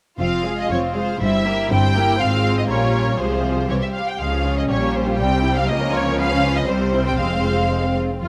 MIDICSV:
0, 0, Header, 1, 6, 480
1, 0, Start_track
1, 0, Key_signature, -4, "minor"
1, 0, Tempo, 499168
1, 185, Time_signature, 2, 2, 24, 8
1, 6421, Tempo, 515907
1, 7912, End_track
2, 0, Start_track
2, 0, Title_t, "Violin section"
2, 0, Program_c, 0, 48
2, 191, Note_on_c, 0, 77, 54
2, 530, Note_off_c, 0, 77, 0
2, 572, Note_on_c, 0, 75, 46
2, 681, Note_on_c, 0, 73, 54
2, 685, Note_off_c, 0, 75, 0
2, 758, Note_off_c, 0, 73, 0
2, 941, Note_on_c, 0, 72, 50
2, 1166, Note_off_c, 0, 72, 0
2, 1171, Note_on_c, 0, 76, 69
2, 1635, Note_off_c, 0, 76, 0
2, 1647, Note_on_c, 0, 79, 77
2, 2106, Note_off_c, 0, 79, 0
2, 2115, Note_on_c, 0, 77, 72
2, 2466, Note_off_c, 0, 77, 0
2, 2478, Note_on_c, 0, 75, 55
2, 2523, Note_off_c, 0, 75, 0
2, 2578, Note_on_c, 0, 73, 60
2, 3050, Note_off_c, 0, 73, 0
2, 3059, Note_on_c, 0, 72, 52
2, 3547, Note_off_c, 0, 72, 0
2, 3555, Note_on_c, 0, 73, 48
2, 3602, Note_off_c, 0, 73, 0
2, 3670, Note_on_c, 0, 76, 43
2, 3719, Note_off_c, 0, 76, 0
2, 3784, Note_on_c, 0, 77, 49
2, 3906, Note_off_c, 0, 77, 0
2, 3917, Note_on_c, 0, 79, 48
2, 4021, Note_on_c, 0, 77, 56
2, 4036, Note_off_c, 0, 79, 0
2, 4390, Note_off_c, 0, 77, 0
2, 4398, Note_on_c, 0, 75, 48
2, 4446, Note_off_c, 0, 75, 0
2, 4510, Note_on_c, 0, 73, 54
2, 4747, Note_off_c, 0, 73, 0
2, 4753, Note_on_c, 0, 72, 51
2, 4981, Note_on_c, 0, 79, 65
2, 4990, Note_off_c, 0, 72, 0
2, 5331, Note_off_c, 0, 79, 0
2, 5344, Note_on_c, 0, 77, 64
2, 5458, Note_on_c, 0, 75, 70
2, 5462, Note_off_c, 0, 77, 0
2, 5698, Note_off_c, 0, 75, 0
2, 5707, Note_on_c, 0, 73, 67
2, 5942, Note_off_c, 0, 73, 0
2, 5950, Note_on_c, 0, 77, 76
2, 6296, Note_off_c, 0, 77, 0
2, 6309, Note_on_c, 0, 75, 66
2, 6421, Note_on_c, 0, 72, 61
2, 6425, Note_off_c, 0, 75, 0
2, 6777, Note_off_c, 0, 72, 0
2, 6785, Note_on_c, 0, 79, 49
2, 6894, Note_on_c, 0, 77, 53
2, 6899, Note_off_c, 0, 79, 0
2, 7607, Note_off_c, 0, 77, 0
2, 7864, Note_on_c, 0, 65, 57
2, 7912, Note_off_c, 0, 65, 0
2, 7912, End_track
3, 0, Start_track
3, 0, Title_t, "Violin section"
3, 0, Program_c, 1, 48
3, 178, Note_on_c, 1, 65, 37
3, 180, Note_on_c, 1, 72, 37
3, 409, Note_off_c, 1, 65, 0
3, 410, Note_off_c, 1, 72, 0
3, 416, Note_on_c, 1, 68, 36
3, 422, Note_on_c, 1, 77, 36
3, 668, Note_off_c, 1, 68, 0
3, 668, Note_on_c, 1, 65, 34
3, 669, Note_on_c, 1, 72, 35
3, 671, Note_off_c, 1, 77, 0
3, 908, Note_on_c, 1, 77, 36
3, 909, Note_on_c, 1, 68, 34
3, 915, Note_off_c, 1, 65, 0
3, 915, Note_off_c, 1, 72, 0
3, 1154, Note_off_c, 1, 68, 0
3, 1154, Note_off_c, 1, 77, 0
3, 1156, Note_on_c, 1, 64, 45
3, 1158, Note_on_c, 1, 72, 42
3, 1381, Note_off_c, 1, 64, 0
3, 1382, Note_off_c, 1, 72, 0
3, 1394, Note_on_c, 1, 70, 42
3, 1397, Note_on_c, 1, 67, 40
3, 1628, Note_on_c, 1, 64, 43
3, 1631, Note_on_c, 1, 72, 42
3, 1636, Note_off_c, 1, 70, 0
3, 1638, Note_off_c, 1, 67, 0
3, 1871, Note_off_c, 1, 64, 0
3, 1873, Note_off_c, 1, 72, 0
3, 1875, Note_on_c, 1, 67, 42
3, 1876, Note_on_c, 1, 70, 42
3, 2101, Note_on_c, 1, 65, 48
3, 2101, Note_on_c, 1, 72, 48
3, 2111, Note_off_c, 1, 67, 0
3, 2112, Note_off_c, 1, 70, 0
3, 2543, Note_off_c, 1, 72, 0
3, 2544, Note_off_c, 1, 65, 0
3, 2579, Note_on_c, 1, 70, 42
3, 2584, Note_on_c, 1, 65, 41
3, 3043, Note_off_c, 1, 65, 0
3, 3054, Note_on_c, 1, 65, 37
3, 3054, Note_on_c, 1, 68, 38
3, 3060, Note_off_c, 1, 70, 0
3, 3534, Note_off_c, 1, 68, 0
3, 3535, Note_off_c, 1, 65, 0
3, 3539, Note_on_c, 1, 67, 33
3, 3541, Note_on_c, 1, 72, 34
3, 3830, Note_off_c, 1, 72, 0
3, 3835, Note_off_c, 1, 67, 0
3, 4034, Note_on_c, 1, 56, 42
3, 4035, Note_on_c, 1, 68, 40
3, 4146, Note_off_c, 1, 56, 0
3, 4146, Note_on_c, 1, 61, 35
3, 4270, Note_on_c, 1, 65, 37
3, 4271, Note_off_c, 1, 61, 0
3, 4388, Note_on_c, 1, 61, 34
3, 4394, Note_off_c, 1, 65, 0
3, 4484, Note_off_c, 1, 68, 0
3, 4503, Note_on_c, 1, 55, 38
3, 4503, Note_on_c, 1, 67, 37
3, 4513, Note_off_c, 1, 61, 0
3, 4621, Note_off_c, 1, 55, 0
3, 4626, Note_on_c, 1, 58, 40
3, 4750, Note_off_c, 1, 58, 0
3, 4757, Note_on_c, 1, 61, 38
3, 4874, Note_off_c, 1, 61, 0
3, 4874, Note_on_c, 1, 65, 38
3, 4988, Note_on_c, 1, 55, 44
3, 4991, Note_off_c, 1, 65, 0
3, 5096, Note_on_c, 1, 60, 41
3, 5099, Note_off_c, 1, 55, 0
3, 5214, Note_on_c, 1, 64, 46
3, 5220, Note_off_c, 1, 60, 0
3, 5338, Note_off_c, 1, 64, 0
3, 5338, Note_on_c, 1, 60, 44
3, 5452, Note_on_c, 1, 70, 44
3, 5454, Note_on_c, 1, 58, 49
3, 5455, Note_off_c, 1, 67, 0
3, 5459, Note_off_c, 1, 60, 0
3, 5567, Note_on_c, 1, 61, 51
3, 5568, Note_off_c, 1, 58, 0
3, 5693, Note_off_c, 1, 61, 0
3, 5693, Note_on_c, 1, 65, 49
3, 5816, Note_off_c, 1, 65, 0
3, 5820, Note_on_c, 1, 61, 50
3, 5934, Note_off_c, 1, 70, 0
3, 5939, Note_off_c, 1, 61, 0
3, 5941, Note_on_c, 1, 71, 53
3, 5945, Note_on_c, 1, 59, 54
3, 6053, Note_off_c, 1, 59, 0
3, 6066, Note_on_c, 1, 61, 48
3, 6182, Note_off_c, 1, 61, 0
3, 6196, Note_on_c, 1, 65, 48
3, 6307, Note_off_c, 1, 65, 0
3, 6309, Note_on_c, 1, 61, 45
3, 6421, Note_off_c, 1, 71, 0
3, 6425, Note_off_c, 1, 61, 0
3, 6425, Note_on_c, 1, 72, 51
3, 6427, Note_on_c, 1, 55, 44
3, 6534, Note_off_c, 1, 55, 0
3, 6543, Note_on_c, 1, 60, 43
3, 6659, Note_off_c, 1, 60, 0
3, 6664, Note_on_c, 1, 64, 41
3, 6780, Note_off_c, 1, 64, 0
3, 6784, Note_on_c, 1, 60, 37
3, 6901, Note_off_c, 1, 60, 0
3, 6913, Note_on_c, 1, 56, 38
3, 7018, Note_off_c, 1, 56, 0
3, 7029, Note_on_c, 1, 60, 34
3, 7141, Note_on_c, 1, 65, 35
3, 7145, Note_off_c, 1, 60, 0
3, 7262, Note_off_c, 1, 65, 0
3, 7269, Note_on_c, 1, 60, 31
3, 7386, Note_off_c, 1, 60, 0
3, 7388, Note_on_c, 1, 56, 30
3, 7506, Note_off_c, 1, 56, 0
3, 7509, Note_on_c, 1, 60, 33
3, 7627, Note_off_c, 1, 60, 0
3, 7634, Note_on_c, 1, 65, 30
3, 7675, Note_off_c, 1, 72, 0
3, 7748, Note_off_c, 1, 65, 0
3, 7754, Note_on_c, 1, 60, 36
3, 7864, Note_on_c, 1, 65, 57
3, 7866, Note_off_c, 1, 60, 0
3, 7912, Note_off_c, 1, 65, 0
3, 7912, End_track
4, 0, Start_track
4, 0, Title_t, "Viola section"
4, 0, Program_c, 2, 48
4, 187, Note_on_c, 2, 60, 36
4, 189, Note_on_c, 2, 53, 35
4, 414, Note_off_c, 2, 60, 0
4, 415, Note_off_c, 2, 53, 0
4, 435, Note_on_c, 2, 56, 32
4, 437, Note_on_c, 2, 65, 32
4, 672, Note_on_c, 2, 60, 37
4, 676, Note_on_c, 2, 53, 38
4, 678, Note_off_c, 2, 56, 0
4, 679, Note_off_c, 2, 65, 0
4, 913, Note_on_c, 2, 65, 36
4, 914, Note_on_c, 2, 56, 38
4, 917, Note_off_c, 2, 60, 0
4, 919, Note_off_c, 2, 53, 0
4, 1148, Note_on_c, 2, 55, 43
4, 1150, Note_on_c, 2, 60, 46
4, 1157, Note_off_c, 2, 56, 0
4, 1157, Note_off_c, 2, 65, 0
4, 1377, Note_off_c, 2, 55, 0
4, 1378, Note_off_c, 2, 60, 0
4, 1396, Note_on_c, 2, 64, 39
4, 1398, Note_on_c, 2, 58, 39
4, 1634, Note_on_c, 2, 60, 42
4, 1636, Note_on_c, 2, 55, 45
4, 1637, Note_off_c, 2, 64, 0
4, 1638, Note_off_c, 2, 58, 0
4, 1874, Note_off_c, 2, 60, 0
4, 1875, Note_off_c, 2, 55, 0
4, 1882, Note_on_c, 2, 58, 44
4, 1882, Note_on_c, 2, 64, 45
4, 2115, Note_off_c, 2, 58, 0
4, 2115, Note_off_c, 2, 64, 0
4, 2122, Note_on_c, 2, 60, 51
4, 2126, Note_on_c, 2, 56, 51
4, 2555, Note_off_c, 2, 60, 0
4, 2557, Note_off_c, 2, 56, 0
4, 2580, Note_on_c, 2, 55, 48
4, 2584, Note_on_c, 2, 61, 46
4, 3052, Note_off_c, 2, 55, 0
4, 3060, Note_on_c, 2, 53, 39
4, 3062, Note_on_c, 2, 56, 38
4, 3063, Note_off_c, 2, 61, 0
4, 3539, Note_off_c, 2, 56, 0
4, 3541, Note_on_c, 2, 52, 35
4, 3543, Note_on_c, 2, 55, 34
4, 3548, Note_off_c, 2, 53, 0
4, 3618, Note_off_c, 2, 52, 0
4, 3831, Note_off_c, 2, 55, 0
4, 4036, Note_on_c, 2, 61, 41
4, 4041, Note_on_c, 2, 53, 36
4, 4487, Note_off_c, 2, 53, 0
4, 4523, Note_on_c, 2, 55, 42
4, 4954, Note_off_c, 2, 61, 0
4, 4996, Note_on_c, 2, 60, 43
4, 5462, Note_on_c, 2, 53, 53
4, 5464, Note_off_c, 2, 60, 0
4, 5464, Note_on_c, 2, 58, 54
4, 5465, Note_off_c, 2, 55, 0
4, 5935, Note_on_c, 2, 61, 52
4, 5939, Note_off_c, 2, 58, 0
4, 6408, Note_off_c, 2, 61, 0
4, 6419, Note_off_c, 2, 53, 0
4, 6422, Note_on_c, 2, 55, 52
4, 6423, Note_on_c, 2, 60, 54
4, 6889, Note_off_c, 2, 55, 0
4, 6894, Note_on_c, 2, 56, 40
4, 7648, Note_off_c, 2, 60, 0
4, 7670, Note_off_c, 2, 56, 0
4, 7857, Note_on_c, 2, 65, 62
4, 7912, Note_off_c, 2, 65, 0
4, 7912, End_track
5, 0, Start_track
5, 0, Title_t, "Cello section"
5, 0, Program_c, 3, 48
5, 182, Note_on_c, 3, 41, 48
5, 594, Note_off_c, 3, 41, 0
5, 665, Note_on_c, 3, 41, 51
5, 1075, Note_off_c, 3, 41, 0
5, 1154, Note_on_c, 3, 43, 53
5, 1558, Note_off_c, 3, 43, 0
5, 1631, Note_on_c, 3, 43, 63
5, 2031, Note_off_c, 3, 43, 0
5, 2109, Note_on_c, 3, 44, 49
5, 2548, Note_off_c, 3, 44, 0
5, 2577, Note_on_c, 3, 46, 50
5, 3058, Note_on_c, 3, 48, 37
5, 3060, Note_off_c, 3, 46, 0
5, 3537, Note_off_c, 3, 48, 0
5, 3549, Note_on_c, 3, 48, 39
5, 3626, Note_off_c, 3, 48, 0
5, 4039, Note_on_c, 3, 49, 40
5, 4485, Note_off_c, 3, 49, 0
5, 4517, Note_on_c, 3, 46, 46
5, 4991, Note_off_c, 3, 46, 0
5, 4994, Note_on_c, 3, 48, 44
5, 5463, Note_off_c, 3, 48, 0
5, 5466, Note_on_c, 3, 49, 51
5, 6416, Note_on_c, 3, 48, 53
5, 6422, Note_off_c, 3, 49, 0
5, 6886, Note_off_c, 3, 48, 0
5, 6891, Note_on_c, 3, 41, 44
5, 7669, Note_off_c, 3, 41, 0
5, 7858, Note_on_c, 3, 56, 49
5, 7912, Note_off_c, 3, 56, 0
5, 7912, End_track
6, 0, Start_track
6, 0, Title_t, "Double bass section"
6, 0, Program_c, 4, 48
6, 188, Note_on_c, 4, 29, 50
6, 597, Note_off_c, 4, 29, 0
6, 675, Note_on_c, 4, 29, 48
6, 1081, Note_off_c, 4, 29, 0
6, 1152, Note_on_c, 4, 31, 57
6, 1557, Note_off_c, 4, 31, 0
6, 1640, Note_on_c, 4, 31, 60
6, 2036, Note_off_c, 4, 31, 0
6, 2105, Note_on_c, 4, 32, 50
6, 2546, Note_off_c, 4, 32, 0
6, 2580, Note_on_c, 4, 34, 47
6, 3061, Note_off_c, 4, 34, 0
6, 3069, Note_on_c, 4, 36, 43
6, 3542, Note_off_c, 4, 36, 0
6, 3555, Note_on_c, 4, 36, 36
6, 3632, Note_off_c, 4, 36, 0
6, 4035, Note_on_c, 4, 37, 41
6, 4484, Note_off_c, 4, 37, 0
6, 4525, Note_on_c, 4, 34, 42
6, 4992, Note_on_c, 4, 36, 46
6, 4995, Note_off_c, 4, 34, 0
6, 5462, Note_off_c, 4, 36, 0
6, 5462, Note_on_c, 4, 37, 50
6, 6417, Note_on_c, 4, 36, 54
6, 6420, Note_off_c, 4, 37, 0
6, 6886, Note_off_c, 4, 36, 0
6, 6896, Note_on_c, 4, 29, 44
6, 7671, Note_off_c, 4, 29, 0
6, 7858, Note_on_c, 4, 41, 58
6, 7912, Note_off_c, 4, 41, 0
6, 7912, End_track
0, 0, End_of_file